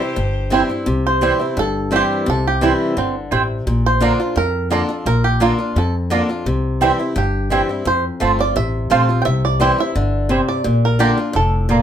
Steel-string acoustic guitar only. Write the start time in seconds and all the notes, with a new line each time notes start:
Already playing: C3
0.00 C4 E4
0.16 G2
0.50 E3 G3 C4 E4
0.69 C4 E4
0.86 C3
1.21 E3 G3 C4 E4
1.40 C4 E4
1.57 G2
1.91 E3 G3 C4 E4
2.26 C3
2.61 E3 G3 C4 E4
2.97 D3
3.32 C3
3.67 A#2
4.01 D3 A#3 D4 F4
4.20 D4 F4
4.36 F2
4.70 D3 A#3 D4 F4
4.89 D4 F4
5.06 A#2
5.40 D3 A#3 D4 F4
5.58 D4 F4
5.76 F2
6.10 D3 A#3 D4 F4
6.29 D4 F4
6.46 C3
6.81 E3 G3 C4 E4
6.99 C4 E4
7.16 G2
7.50 E3 G3 C4 E4
7.69 C4 E4
7.85 F2
8.20 F3 A3 C4 F4
8.39 C4 F4
8.56 C3
8.90 F3 A3 C4 F4
9.09 C4 F4
9.25 C3
9.60 E3 G3 C4 E4
9.78 C4 E4
9.96 D3
10.29 C3
10.64 A#2
10.99 D3 A#3 D4 F4
11.17 D4 F4
11.33 A2
11.69 A#2